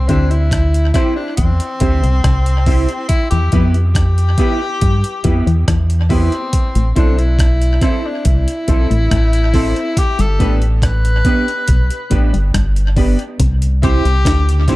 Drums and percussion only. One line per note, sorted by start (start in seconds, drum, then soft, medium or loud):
0.09 kick medium
0.09 closed hi-hat medium
0.31 closed hi-hat soft
0.51 kick loud
0.51 cross-stick loud
0.51 closed hi-hat medium
0.74 closed hi-hat soft
0.94 kick loud
0.94 cross-stick medium
0.94 closed hi-hat medium
1.37 kick loud
1.37 closed hi-hat loud
1.60 closed hi-hat medium
1.80 kick loud
1.80 closed hi-hat medium
2.04 closed hi-hat soft
2.24 kick loud
2.24 cross-stick loud
2.24 closed hi-hat medium
2.46 closed hi-hat soft
2.66 kick medium
2.66 open hi-hat medium
2.89 closed hi-hat soft
3.09 kick loud
3.09 closed hi-hat loud
3.31 closed hi-hat medium
3.52 kick medium
3.52 closed hi-hat medium
3.74 closed hi-hat soft
3.95 kick loud
3.95 cross-stick loud
3.95 closed hi-hat loud
4.18 closed hi-hat soft
4.38 kick medium
4.38 closed hi-hat medium
4.81 kick loud
4.81 closed hi-hat medium
5.04 closed hi-hat medium
5.24 kick loud
5.24 closed hi-hat medium
5.47 closed hi-hat soft
5.68 kick loud
5.68 cross-stick loud
5.68 closed hi-hat medium
5.90 closed hi-hat soft
6.10 kick medium
6.10 open hi-hat medium
6.32 closed hi-hat soft
6.53 kick loud
6.53 closed hi-hat loud
6.75 closed hi-hat medium
6.96 kick medium
6.96 closed hi-hat medium
7.19 closed hi-hat soft
7.39 kick loud
7.39 cross-stick loud
7.39 closed hi-hat medium
7.62 closed hi-hat soft
7.81 kick medium
7.81 cross-stick medium
7.81 closed hi-hat medium
8.25 kick loud
8.25 closed hi-hat loud
8.48 closed hi-hat medium
8.68 kick loud
8.68 closed hi-hat medium
8.91 closed hi-hat soft
9.11 kick loud
9.11 cross-stick loud
9.11 closed hi-hat medium
9.33 closed hi-hat medium
9.54 kick medium
9.54 open hi-hat medium
9.76 closed hi-hat soft
9.97 kick loud
9.97 closed hi-hat loud
10.19 closed hi-hat medium
10.40 kick loud
10.40 closed hi-hat medium
10.62 closed hi-hat soft
10.82 kick loud
10.82 cross-stick medium
10.82 closed hi-hat medium
11.05 closed hi-hat soft
11.25 kick medium
11.25 closed hi-hat medium
11.48 closed hi-hat soft
11.68 kick loud
11.68 closed hi-hat medium
11.90 closed hi-hat medium
12.11 kick loud
12.11 closed hi-hat medium
12.34 closed hi-hat soft
12.54 kick loud
12.54 cross-stick loud
12.54 closed hi-hat medium
12.76 closed hi-hat medium
12.97 kick medium
12.97 open hi-hat medium
13.19 closed hi-hat soft
13.40 kick loud
13.40 closed hi-hat loud
13.62 closed hi-hat medium
13.83 kick loud
13.83 closed hi-hat medium
14.05 closed hi-hat soft
14.25 kick loud
14.25 snare loud
14.25 closed hi-hat loud
14.49 closed hi-hat medium
14.68 kick loud
14.68 snare medium
14.68 closed hi-hat medium